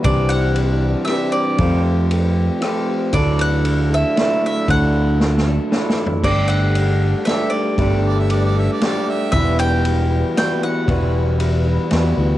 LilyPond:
<<
  \new Staff \with { instrumentName = "Mandolin" } { \time 3/4 \key g \major \tempo 4 = 116 d''8 fis''4. e''8 d''8~ | d''8 r2 r8 | d''8 fis''4 e''4 e''8 | fis''2~ fis''8 r8 |
d''8 fis''4. e''8 d''8~ | d''8 r2 r8 | e''8 g''4. g''8 fis''8~ | fis''8 r2 r8 | }
  \new Staff \with { instrumentName = "Harmonica" } { \time 3/4 \key g \major r2. | r2. | r2. | r2. |
r2. | r8 d''16 e''16 d''16 d''16 e''16 d''16 d''8 e''8 | r2. | r2. | }
  \new Staff \with { instrumentName = "Steel-string acoustic guitar" } { \time 3/4 \key g \major <c e g d' e' c''>4 <g d' e' c''>4 <g d' e' c''>8 <g d' e' c''>8 | <f g c' g' a'>4 <g c' g' a'>4 <g c' g' a'>8 <c' g' a'>8 | <d fis a d' e' a'>4 <a d' e' a'>8 <a d' e' a'>8 <a d' e' a'>4 | <d fis a d' e' a'>4 <a d' e' a'>8 <a d' e' a'>8 <a d' e' a'>8 <a d' e' a'>8 |
<g d' g' a'>4 <g d' g' a'>4 <g d' g' a'>8 <d' g' a'>8 | <g d' g' a'>4 <g d' g' a'>8 <d' g' a'>8 <g d' g' a'>4 | <e g e' fis' b'>4 <g e' b'>4 <g e' fis' b'>8 <e' fis' b'>8 | <e g e' fis' b'>4 <g e' fis' b'>8 <e' fis' b'>8 <g e' fis' b'>8 <e' fis' b'>8 | }
  \new Staff \with { instrumentName = "Clean electric guitar" } { \time 3/4 \key g \major <c e g d' g'>2 <c e g d' g'>4 | <f a c' g'>2 <f a c' g'>4 | <d fis a d' e'>2 <d fis a d' e'>4 | <d fis a d' e'>2 <d fis a d' e'>4 |
<g a d' g'>2 <g a d' g'>4 | <g a d' g'>2 <g a d' g'>4 | <e, b, e g e' fis'>2 <e, b, e g e' fis'>4 | <e, b, e g e' fis'>2 <e, b, e g e' fis'>4 | }
  \new Staff \with { instrumentName = "Fingered electric bass" } { \clef bass \time 3/4 \key g \major c,2 r4 | f,2 r4 | d,2 r4 | d,2 r4 |
g,,2 r4 | g,,2 r4 | e,,2 r4 | e,,2 e,8 d,8 | }
  \new DrumStaff \with { instrumentName = "Drums" } \drummode { \time 3/4 <bd cymr>8 cymr8 cymr4 <cymr ss>4 | <bd cymr>4 cymr4 <cymr ss>4 | <bd cymr>8 cymr8 cymr4 <cymr sn>4 | <bd cymr>4 \tuplet 3/2 { sn8 sn8 r8 sn8 sn8 tomfh8 } |
<cymc bd>8 cymr8 cymr4 <cymr sn>4 | <bd cymr>4 cymr4 <cymr sn>4 | <bd cymr>8 cymr8 cymr4 <cymr sn>4 | <bd cymr>4 cymr4 <cymr sn>4 | }
>>